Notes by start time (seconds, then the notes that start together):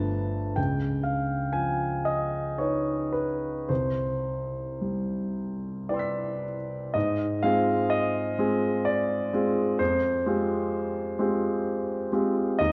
Already playing: G1 F3 A3 D4 B4 A5
0.56 C#2 G5
1.04 F5
1.53 F3 G#5
2.05 D#5
2.58 D#4 B4 C#5
3.13 B4
3.69 C2 C5
4.81 G3
5.89 E4 B4 D5 G5
5.94 C6 E6
5.99 B6
6.94 G#2 D#5
7.42 G#3 C4 F4 G#4 F5
7.90 D#5
8.38 G#3 C4 F4 G#4
8.85 D5
9.33 G#3 C4 F4 G#4
9.79 F2 C5
10.26 G#3 C4 F4 G4
11.19 G#3 C4 F4 G4
12.13 G#3 C4 F4 G4
12.59 D#2 D#5